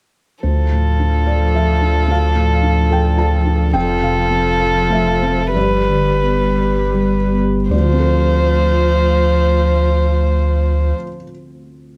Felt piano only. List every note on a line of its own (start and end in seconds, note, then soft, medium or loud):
0.43 2.05 D2 soft
0.43 1.23 C5 medium
0.72 1.17 A2 soft
0.99 1.44 D4 soft
1.27 1.71 A4 soft
1.27 1.53 D5 medium
1.55 1.99 F3 soft
1.55 2.06 E5 medium
1.81 2.26 D4 soft
2.08 3.70 D2 soft
2.08 2.89 F5 medium
2.36 2.80 A2 soft
2.63 3.07 D4 soft
2.91 3.35 A4 soft
2.91 3.18 G5 medium
3.18 3.63 F3 soft
3.18 3.71 A5 medium
3.45 3.74 D4 soft
3.73 5.50 F2 medium
3.73 4.00 G5 medium
4.01 4.48 C3 soft
4.01 4.88 F5 medium
4.30 4.78 C4 medium
4.60 5.10 A4 soft
4.89 5.41 A3 soft
4.89 5.52 E5 medium
5.22 5.55 C4 soft
5.55 7.68 G2 medium
5.55 6.91 D5 medium
5.89 6.44 D3 soft
6.22 6.80 B3 soft
6.57 7.17 B4 soft
6.94 7.56 G3 soft
7.32 7.71 B3 soft
7.71 10.94 D2 medium
7.71 10.94 D5 medium
7.79 11.01 D3 medium
7.85 11.08 F3 medium
7.92 11.15 C4 medium
7.99 11.22 A4 medium
8.07 11.29 C5 soft